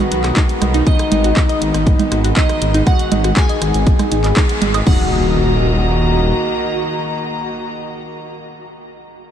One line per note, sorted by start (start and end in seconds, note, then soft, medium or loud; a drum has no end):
0.00 4.83 D#3 medium
0.00 4.83 G#3 medium
0.00 4.83 B3 medium
0.00 0.77 F#4 loud
0.00 0.77 F#5 loud
0.12 0.32 B1 loud
0.12 0.23 F#4 medium
0.12 closed hi-hat loud
0.24 0.30 F#4 medium
0.24 cross-stick medium
0.24 clap soft
0.24 closed hi-hat medium
0.37 0.43 D#4 loud
0.37 kick loud
0.37 clap loud
0.37 closed hi-hat medium
0.49 closed hi-hat medium
0.62 0.82 B1 loud
0.62 cross-stick medium
0.62 closed hi-hat loud
0.62 low conga loud
0.74 0.84 D#4 loud
0.74 closed hi-hat medium
0.87 2.27 D#4 loud
0.87 0.97 D#4 medium
0.87 2.27 D#5 loud
0.87 kick loud
0.87 closed hi-hat medium
0.99 cross-stick medium
0.99 closed hi-hat medium
1.12 1.32 G#1 loud
1.12 1.24 D#4 medium
1.12 closed hi-hat loud
1.12 low conga loud
1.24 1.30 F#4 medium
1.24 closed hi-hat medium
1.37 1.47 F#4 loud
1.37 kick loud
1.37 cross-stick medium
1.37 clap loud
1.37 closed hi-hat medium
1.49 1.61 D#5 loud
1.49 closed hi-hat medium
1.62 1.72 G#1 medium
1.62 closed hi-hat loud
1.74 1.95 G#1 medium
1.74 cross-stick medium
1.74 closed hi-hat medium
1.87 kick loud
1.87 closed hi-hat medium
1.99 2.09 D#4 medium
1.99 closed hi-hat medium
1.99 low conga loud
2.12 2.32 G#1 loud
2.12 2.23 F#4 medium
2.12 cross-stick medium
2.12 closed hi-hat loud
2.24 2.30 F#4 medium
2.24 closed hi-hat medium
2.37 2.43 D#4 loud
2.37 2.83 D#4 medium
2.37 2.83 D#5 medium
2.37 kick loud
2.37 clap loud
2.37 closed hi-hat medium
2.49 cross-stick medium
2.49 closed hi-hat medium
2.62 2.82 G#1 loud
2.62 closed hi-hat loud
2.74 2.84 D#4 loud
2.74 closed hi-hat medium
2.87 2.97 D#4 medium
2.87 3.33 F#4 loud
2.87 3.33 F#5 medium
2.87 kick loud
2.87 cross-stick medium
2.87 closed hi-hat medium
2.99 closed hi-hat medium
3.12 3.32 G#1 loud
3.12 3.24 D#4 medium
3.12 closed hi-hat loud
3.12 low conga loud
3.24 3.30 F#4 medium
3.24 cross-stick medium
3.24 closed hi-hat medium
3.37 3.47 F#4 loud
3.37 4.77 G#4 loud
3.37 4.77 G#5 loud
3.37 kick loud
3.37 clap loud
3.37 closed hi-hat medium
3.49 3.61 D#5 loud
3.49 closed hi-hat medium
3.62 3.72 G#1 medium
3.62 cross-stick medium
3.62 closed hi-hat loud
3.74 3.95 G#1 medium
3.74 closed hi-hat medium
3.87 kick loud
3.87 closed hi-hat medium
3.99 4.09 D#4 medium
3.99 cross-stick medium
3.99 closed hi-hat medium
3.99 low conga loud
4.12 4.32 G#1 loud
4.12 4.22 D#4 medium
4.12 closed hi-hat loud
4.24 4.34 D#5 medium
4.24 clap soft
4.24 closed hi-hat medium
4.37 4.47 D#4 medium
4.37 kick loud
4.37 cross-stick medium
4.37 clap loud
4.37 closed hi-hat medium
4.49 closed hi-hat medium
4.62 4.82 G#1 medium
4.62 closed hi-hat loud
4.62 low conga medium
4.74 4.80 D#5 loud
4.74 cross-stick medium
4.74 closed hi-hat medium
4.87 6.33 D#1 loud
4.87 8.38 D#3 medium
4.87 8.38 A#3 medium
4.87 5.10 D#4 medium
4.87 8.38 F#4 loud
4.87 8.38 F#4 medium
4.87 8.38 D#5 medium
4.87 8.38 F#5 loud
4.87 8.38 A#5 medium
4.87 kick loud
4.87 crash medium
4.87 impact medium